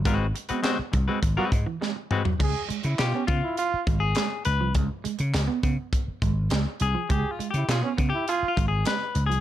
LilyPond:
<<
  \new Staff \with { instrumentName = "Clean electric guitar" } { \time 4/4 \key des \mixolydian \tempo 4 = 102 <aes c' ges' b'>16 r8 <aes c' ges' b'>16 <aes c' ges' c''>16 r8 <aes c' ges' b'>16 r16 <aes c' ges' b'>16 r4 <aes c' ges' b'>16 r16 | r4 g'8 f'4~ f'16 aes'8. ces''8 | r2. r8 aes'8 | \tuplet 3/2 { g'8 f'8 g'8 aes'8 f'8 g'8 aes'8 f'8 aes'8 ces''4 aes'8 } | }
  \new Staff \with { instrumentName = "Trombone" } { \time 4/4 \key des \mixolydian r2 r16 ges'16 r4. | aes'8 r16 fes'16 f'16 des'16 r16 fes'16 f'8 r4. | r1 | aes'8 r16 fes'16 f'16 des'16 r16 fes'16 f'8 r4. | }
  \new Staff \with { instrumentName = "Clean electric guitar" } { \clef bass \time 4/4 \key des \mixolydian aes16 r8 b16 b16 r8 aes16 r16 ges16 r16 fes16 aes16 r8 ges16 | aes16 r16 aes16 r8 ces'16 ces'16 r8. aes16 r16 aes16 r8 f16 | aes16 r16 aes16 r8 ces'16 ces'16 r8. aes16 r16 aes16 r8 f16 | aes16 r16 aes16 r8 ces'16 ces'16 r8. aes16 r16 aes16 r8 f16 | }
  \new Staff \with { instrumentName = "Slap bass" } { \clef bass \time 4/4 \key des \mixolydian aes,,8 r4 c,16 r16 aes,,16 r16 aes,16 r4 r16 | des,16 r8 des16 ces16 r16 des16 r8. aes,,8 r8 des,16 c,16 | des,16 r8 des16 des,16 r16 des16 r8. aes,,8 des,16 r16 c,16 r16 | des,16 r8 des16 ces16 r16 des16 r8. aes,,8 r8 des,16 c,16 | }
  \new DrumStaff \with { instrumentName = "Drums" } \drummode { \time 4/4 <hh bd>8 hh16 hh16 <hc hh sn>8 <hh bd>8 <hh bd>8 <hh bd>8 sn8 toml16 tomfh16 | <cymc bd>8 hh16 hh16 <hc hh sn>8 <hh bd>8 hh8 <hh bd>8 <hc hh sn>8 hh8 | <hh bd>8 hh16 hh16 <hc hh sn>8 <hh bd>8 <hh bd>8 <hh bd>8 <hc hh sn>8 hh8 | <hh bd>8 hh16 hh16 <hc hh sn>8 <hh bd>8 hh8 <hh bd>8 <hc hh sn>8 hh16 hh16 | }
>>